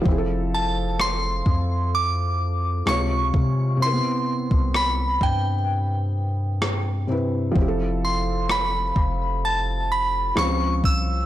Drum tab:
SD |----r-------r---|----r-------r---|----r-------r---|
BD |o-----o-------o-|---o--o---------|o-----o-------o-|